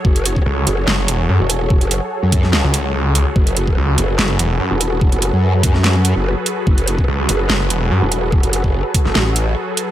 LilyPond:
<<
  \new Staff \with { instrumentName = "Supersaw synth" } { \time 4/4 \key fis \minor \tempo 4 = 145 << { cis''1~ | cis''1 | b'1~ | b'1~ |
b'1~ | b'1 | } \\ { <fis fis' gis' a'>1~ | <fis fis' gis' a'>1~ | <fis fis' gis' a'>1~ | <fis fis' gis' a'>1~ |
<fis fis' gis' a'>1~ | <fis fis' gis' a'>1 | } >> }
  \new Staff \with { instrumentName = "Detuned saw bass" } { \clef bass \time 4/4 \key fis \minor r4 cis,8 r8 fis,,8 e,,8 fis,16 r8. | r2 r16 cis,4. r16 | r4 cis,8 r8 fis,,8 e,,8 fis,16 r8. | r1 |
r4 cis,8 r8 fis,,8 e,,8 fis,16 r8. | r4. r16 fis,,16 r2 | }
  \new Staff \with { instrumentName = "Wobble bass" } { \clef bass \time 4/4 \key fis \minor fis,,4 r8 fis,,8 r4 r16 e,,8.~ | e,,16 fis,,8 r8 fis,4 r4. r16 | fis,,4 r8 fis,,8 r4 r16 e,,8.~ | e,,16 fis,,8 fis,2 fis,,8 r8. |
fis,,4 r8 fis,,8 r4 r16 e,,8.~ | e,,16 fis,,8 fis,,8 r8. a,,4 r4 | }
  \new DrumStaff \with { instrumentName = "Drums" } \drummode { \time 4/4 bd16 hh16 hh16 bd16 r8 hh8 sn8 hh8 r8 hh8 | bd16 hh16 hh8 r8 <hh bd>16 sn16 sn8 hh8 r8 hh8 | bd16 hh16 hh16 bd16 r8 hh8 sn8 hh8 r8 hh8 | bd16 hh16 hh8 r8 <hh bd>16 sn16 sn8 hh8 r8 hh8 |
bd16 hh16 hh16 bd16 r8 hh8 sn8 hh8 r8 hh8 | bd16 hh16 hh16 bd16 r8 <hh bd>16 sn16 sn8 hh8 r8 hh8 | }
>>